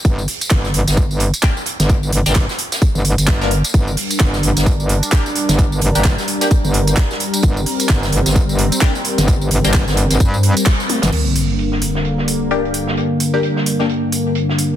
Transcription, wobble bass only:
X:1
M:4/4
L:1/16
Q:"Swing 16ths" 1/4=130
K:Gm
V:1 name="Wobble bass" clef=bass
G,,,2 z2 G,,,2 G,,, G,,,4 z4 G,,,- | G,,,2 G,,, G,,,2 z4 G,,,2 G,,,4 z | G,,,2 z2 G,,,2 G,,, G,,,4 z4 G,,,- | G,,,2 G,,, G,,,2 z4 G,,,3 z4 |
G,,,2 z2 G,,,2 G,,, G,,,4 z4 G,,,- | G,,,2 G,,, G,,,2 G,,,2 G,,, G,,3 z4 G,,, | z16 | z16 |]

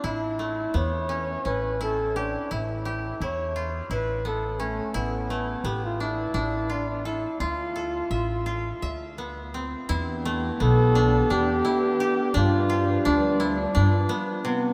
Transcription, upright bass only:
X:1
M:7/8
L:1/8
Q:1/4=86
K:Ddor
V:1 name="Upright bass" clef=bass
A,,,2 E,,2 A,,,3 | A,,,2 E,,2 A,,,3 | A,,,2 A,,,2 A,,,3 | D,,2 A,,,2 D,,3 |
E,,2 B,,,2 E,, z2 | G,,2 D,,2 G,, z2 |]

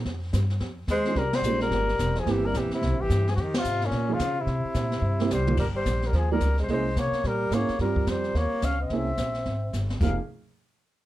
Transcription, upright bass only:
X:1
M:4/4
L:1/8
Q:"Swing" 1/4=217
K:Fm
V:1 name="Upright bass" clef=bass
F,,2 G,,2 F,,2 E,,2 | C,,2 B,,,2 G,,,2 =E,,,2 | G,,,2 B,,, z (3C,, B,,, G,,, G,,2 | F,,2 A,,2 B,,2 D,2 |
C, z B,,2 G,,2 C,,2 | G,,,2 B,,,2 E,,2 D,,2 | C,,2 C, z B,,2 A,, z | G,,2 F,,2 E,, z D,,2 |
C,,2 B,,,2 A,,,2 G,,,2 | F,,, z6 z |]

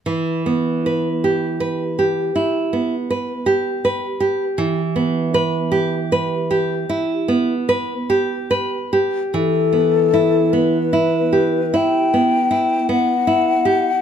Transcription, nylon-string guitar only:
X:1
M:4/4
L:1/8
Q:1/4=52
K:Em
V:1 name="Nylon-string guitar"
(3E, B, B (3G B G (3E B, B (3G B G | (3E, B, B (3G B G (3E B, B (3G B G | (3E, B, E (3B, E G (3E B, E (3B, E G |]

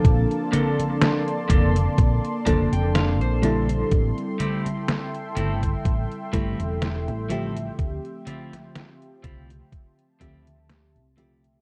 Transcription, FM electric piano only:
X:1
M:4/4
L:1/8
Q:"Swing 16ths" 1/4=62
K:Dm
V:1 name="FM electric piano"
[F,B,CDA]4- [F,B,CDA] [F,B,CDA]2 [G,CEA]- | [G,CEA]4- [G,CEA] [G,A,CEA]2 [F,A,CGe]- | [F,A,CGe]4- [F,A,CGe] [F,A,CGe]2 [F,A,CGe] |]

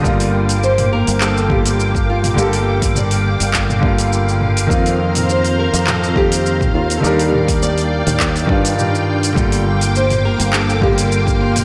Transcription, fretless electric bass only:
X:1
M:4/4
L:1/16
Q:"Swing 16ths" 1/4=103
K:Gm
V:1 name="Fretless electric bass" clef=bass
G,,,6- G,,, G,,,8- G,,, | G,,,6- G,,, G,,,8- G,,, | F,,6- F,, F,,6- F,, E,,2 | E,,6- E,, E,,3 G,,6 |
G,,,6- G,,, G,,,8- G,,, |]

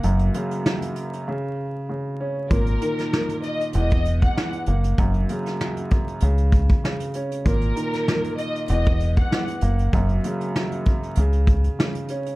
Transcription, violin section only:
X:1
M:4/4
L:1/16
Q:"Swing 16ths" 1/4=97
K:F#mix
V:1 name="Violin section"
z16 | A6 d2 d3 f2 z3 | z16 | A6 d2 d3 f2 z3 |
z16 |]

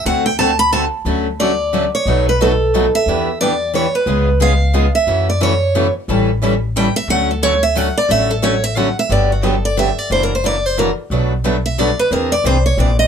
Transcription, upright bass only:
X:1
M:3/4
L:1/8
Q:"Swing" 1/4=179
K:Dmix
V:1 name="Upright bass" clef=bass
D,,6 | [K:D] D,,6 | B,,,6 | E,,6 |
C,,6 | F,,6 | A,,,6 | D,,6 |
A,,,6 | [K:G] G,,,6 | F,,,6 | B,,,6 |
E,,2 ^B,,,2 _B,,,2 |]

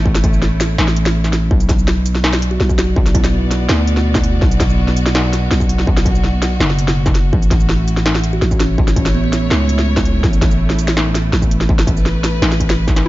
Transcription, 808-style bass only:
X:1
M:4/4
L:1/8
Q:1/4=165
K:Amix
V:1 name="808-style bass" clef=bass
A,,,4 A,,,4 | B,,,6 B,,,2- | B,,,4 D,,4 | B,,,6 B,,,2- |
B,,,4 F,,,4 | A,,,6 A,,,2- | A,,,4 C,,4 | A,,,6 A,,,2- |
A,,,4 A,,,4 |]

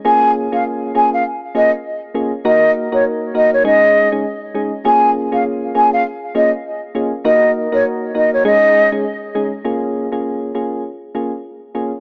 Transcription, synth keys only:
X:1
M:4/4
L:1/16
Q:"Swing 16ths" 1/4=100
K:Bbphr
V:1 name="Synth keys"
[B,DFA]3 [B,DFA]3 [B,DFA]2 z2 [B,DFA] z3 [B,DFA] z | [B,EGB]3 [B,EGB]3 [B,EGB]2 [A,DEA]3 [A,DEA] z2 [A,DEA] z | [B,DFA]3 [B,DFA]3 [B,DFA]2 z2 [B,DFA] z3 [B,DFA] z | [B,EGB]3 [B,EGB]3 [B,EGB]2 [A,DEA]3 [A,DEA] z2 [A,DEA] z |
[B,DFA]3 [B,DFA]3 [B,DFA]2 z2 [B,DFA] z3 [B,DFA] z |]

